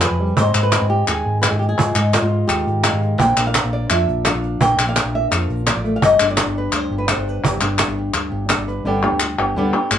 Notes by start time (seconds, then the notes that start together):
Already playing: C3 G#4
0.01 F3 B4, cajon slap, clap
0.11 F2
0.20 G3
0.37 G#2 G#3 C4 D#4 C5, cajon bass
0.55 G#2 G#3, cajon slap, clap
0.63 B4
0.72 C4, cajon slap, clap
0.81 G#2
0.90 G4
1.08 D#2 D#3 G#4, clap
1.25 G#2
1.42 G#3 B4, cajon slap, clap
1.51 G#2 G#4
1.59 G4, cajon slap
1.69 G#4
1.78 G#2 F4, cajon bass
1.95 G#2 G#3 D#4, cajon slap, clap
2.13 F4, cajon slap, clap
2.22 G#2 F4
2.47 D#2 D#3 G4, clap
2.66 G#2, cajon slap
2.83 G#3 F5, cajon slap, clap
2.93 G#2
3.02 cajon slap
3.19 A#1 A#3 D4 A#4 C5 G5, cajon bass
3.37 A#1 D4, clap
3.47 F5
3.55 cajon slap, clap
3.64 A#1
3.73 D5
3.90 F2 F3 E5, clap
4.08 A#1, cajon slap
4.25 D4 F5, cajon slap, clap
4.34 A#1
4.43 cajon slap
4.60 A#1 A#3 G5, cajon bass
4.77 A#1 D4, cajon slap, clap
4.89 F5
4.96 A#4, cajon slap, clap
5.04 A#1
5.15 E5
5.31 F2 F3 F5, clap
5.49 A#1 A#4, cajon slap
5.66 A#3 D5, cajon slap, clap
5.75 A1
5.84 A3, cajon slap
5.96 F5
6.02 G1 G2 D#5, cajon bass
6.20 G1 D4, clap
6.31 D5
6.37 cajon slap, clap
6.46 G1
6.58 B4
6.72 D2 G2 C5, clap
6.90 G1 G4
6.98 B4
7.08 D4 C5, cajon slap, clap
7.17 G1 C5
7.27 B4, cajon slap
7.43 G1 G2 G4, cajon bass
7.61 G1 D4, clap
7.78 G4, cajon slap, clap
7.88 G1
7.98 G4
8.14 D2 G2, clap
8.31 G1 G4
8.49 D4, cajon slap, clap
8.58 G1
8.68 B4, cajon slap
8.84 G1 D3 G3 B3 D4 G4
9.04 B3 D4 G4
9.11 D2
9.20 muted nylon-string guitar stroke, clap
9.38 G1 B3 D4 G4
9.55 D2 D3 G3 B3 D4 G4
9.74 B3 D4 G4
9.91 G1, muted nylon-string guitar stroke, clap